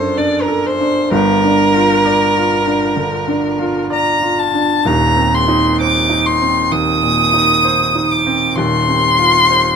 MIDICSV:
0, 0, Header, 1, 3, 480
1, 0, Start_track
1, 0, Tempo, 934579
1, 580, Time_signature, 4, 2, 24, 8
1, 5012, End_track
2, 0, Start_track
2, 0, Title_t, "Violin"
2, 0, Program_c, 0, 40
2, 0, Note_on_c, 0, 72, 87
2, 92, Note_on_c, 0, 74, 79
2, 99, Note_off_c, 0, 72, 0
2, 217, Note_on_c, 0, 70, 77
2, 224, Note_off_c, 0, 74, 0
2, 340, Note_on_c, 0, 72, 89
2, 348, Note_off_c, 0, 70, 0
2, 577, Note_off_c, 0, 72, 0
2, 580, Note_on_c, 0, 70, 108
2, 1993, Note_off_c, 0, 70, 0
2, 2015, Note_on_c, 0, 82, 94
2, 2254, Note_on_c, 0, 81, 91
2, 2262, Note_off_c, 0, 82, 0
2, 2502, Note_on_c, 0, 82, 94
2, 2509, Note_off_c, 0, 81, 0
2, 2747, Note_on_c, 0, 84, 88
2, 2754, Note_off_c, 0, 82, 0
2, 2979, Note_off_c, 0, 84, 0
2, 2982, Note_on_c, 0, 86, 91
2, 3217, Note_on_c, 0, 84, 91
2, 3225, Note_off_c, 0, 86, 0
2, 3450, Note_on_c, 0, 87, 103
2, 3457, Note_off_c, 0, 84, 0
2, 4167, Note_on_c, 0, 86, 84
2, 4174, Note_off_c, 0, 87, 0
2, 4394, Note_on_c, 0, 84, 103
2, 4401, Note_off_c, 0, 86, 0
2, 5012, Note_off_c, 0, 84, 0
2, 5012, End_track
3, 0, Start_track
3, 0, Title_t, "Grand piano"
3, 0, Program_c, 1, 0
3, 0, Control_c, 1, 64, 127
3, 0, Note_on_c, 1, 42, 66
3, 0, Note_on_c, 1, 62, 55
3, 0, Note_on_c, 1, 69, 60
3, 89, Note_off_c, 1, 62, 0
3, 89, Note_on_c, 1, 62, 56
3, 187, Note_off_c, 1, 69, 0
3, 247, Note_on_c, 1, 69, 52
3, 352, Note_off_c, 1, 62, 0
3, 412, Note_on_c, 1, 62, 57
3, 511, Note_off_c, 1, 69, 0
3, 554, Note_off_c, 1, 42, 0
3, 571, Note_on_c, 1, 31, 69
3, 576, Note_on_c, 1, 43, 67
3, 577, Note_off_c, 1, 62, 0
3, 589, Control_c, 1, 64, 0
3, 670, Control_c, 1, 64, 127
3, 739, Note_on_c, 1, 62, 61
3, 896, Note_on_c, 1, 65, 58
3, 992, Note_off_c, 1, 62, 0
3, 1054, Note_on_c, 1, 74, 63
3, 1149, Note_off_c, 1, 65, 0
3, 1216, Note_on_c, 1, 65, 55
3, 1307, Note_off_c, 1, 74, 0
3, 1369, Note_on_c, 1, 62, 51
3, 1468, Note_off_c, 1, 65, 0
3, 1505, Note_off_c, 1, 31, 0
3, 1508, Note_off_c, 1, 43, 0
3, 1521, Note_on_c, 1, 50, 53
3, 1625, Note_off_c, 1, 62, 0
3, 1682, Note_on_c, 1, 62, 53
3, 1783, Note_off_c, 1, 50, 0
3, 1843, Note_on_c, 1, 65, 60
3, 1945, Note_off_c, 1, 62, 0
3, 2005, Note_on_c, 1, 74, 57
3, 2105, Note_off_c, 1, 65, 0
3, 2166, Note_on_c, 1, 65, 53
3, 2267, Note_off_c, 1, 74, 0
3, 2331, Note_on_c, 1, 62, 52
3, 2429, Note_off_c, 1, 65, 0
3, 2491, Note_on_c, 1, 27, 66
3, 2495, Note_off_c, 1, 62, 0
3, 2496, Note_on_c, 1, 39, 65
3, 2508, Control_c, 1, 64, 0
3, 2584, Control_c, 1, 64, 127
3, 2654, Note_on_c, 1, 60, 57
3, 2815, Note_on_c, 1, 63, 60
3, 2913, Note_off_c, 1, 60, 0
3, 2979, Note_on_c, 1, 72, 56
3, 3072, Note_off_c, 1, 63, 0
3, 3130, Note_on_c, 1, 63, 54
3, 3232, Note_off_c, 1, 72, 0
3, 3293, Note_on_c, 1, 60, 45
3, 3386, Note_off_c, 1, 63, 0
3, 3429, Note_off_c, 1, 27, 0
3, 3431, Note_off_c, 1, 39, 0
3, 3450, Note_on_c, 1, 39, 52
3, 3546, Note_off_c, 1, 60, 0
3, 3609, Note_on_c, 1, 46, 48
3, 3767, Note_on_c, 1, 63, 55
3, 3863, Note_off_c, 1, 46, 0
3, 3925, Note_on_c, 1, 72, 58
3, 4021, Note_off_c, 1, 63, 0
3, 4083, Note_on_c, 1, 63, 44
3, 4180, Note_off_c, 1, 72, 0
3, 4245, Note_on_c, 1, 60, 53
3, 4340, Note_off_c, 1, 63, 0
3, 4384, Note_off_c, 1, 39, 0
3, 4397, Note_on_c, 1, 27, 61
3, 4403, Note_on_c, 1, 39, 66
3, 4406, Note_off_c, 1, 60, 0
3, 4414, Control_c, 1, 64, 0
3, 4488, Control_c, 1, 64, 127
3, 4561, Note_on_c, 1, 60, 49
3, 4718, Note_on_c, 1, 65, 51
3, 4823, Note_off_c, 1, 60, 0
3, 4881, Note_on_c, 1, 72, 58
3, 4981, Note_off_c, 1, 65, 0
3, 5012, Note_off_c, 1, 27, 0
3, 5012, Note_off_c, 1, 39, 0
3, 5012, Note_off_c, 1, 72, 0
3, 5012, End_track
0, 0, End_of_file